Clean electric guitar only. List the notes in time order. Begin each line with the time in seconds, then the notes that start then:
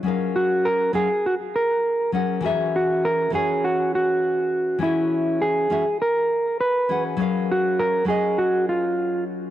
0.36 F#4
0.65 A#4
0.95 G#4
1.26 F#4
1.56 A#4
2.76 F#4
3.05 A#4
3.35 G#4
3.64 F#4
3.95 F#4
4.83 E4
5.42 G#4
6.02 A#4
6.61 B4
7.52 F#4
7.79 A#4
8.08 G#4
8.38 F#4
8.69 F4